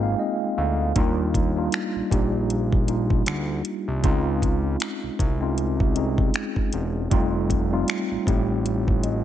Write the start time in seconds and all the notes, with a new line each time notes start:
Already playing: G#1 G#3 A#3 C4 D#4 F4 G#4 F5 G5 G#5
0.03 F5
0.19 D#5
0.58 D2 F5
0.95 D#2 G3 A#3 D4 D#4 F4, kick, closed hi-hat
1.34 kick, closed hi-hat
1.56 G3 A#3 D4 D#4 F4
1.72 finger snap, closed hi-hat
1.96 A#1
2.10 A#1 G3 A#3 D4 D#4 G4, kick, closed hi-hat
2.50 closed hi-hat
2.73 kick
2.87 G3 A#3 D4 D#4 F4, closed hi-hat
3.10 kick
3.26 D2, finger snap, closed hi-hat
3.65 closed hi-hat
3.88 C2
4.03 C#2 G#3 C4 C#4 D#4 F4, kick, closed hi-hat
4.42 kick, closed hi-hat
4.80 finger snap, closed hi-hat
5.03 C2
5.19 C2, kick, closed hi-hat
5.40 G#3 C4 C#4 D#4 F4
5.58 closed hi-hat
5.80 kick
5.95 G#3 C4 C#4 D#4 G#4, closed hi-hat
6.18 kick
6.34 finger snap, closed hi-hat
6.56 kick
6.73 E1, closed hi-hat
7.10 F1 G3 A3 C4 D#4 F4, kick, closed hi-hat
7.50 kick, closed hi-hat
7.71 G3 A3 C4 D#4 F4
7.88 finger snap, closed hi-hat
8.11 A1
8.26 A1 G3 A3 C4 D#4 G4, kick, closed hi-hat
8.66 closed hi-hat
8.88 kick
9.03 D#5, closed hi-hat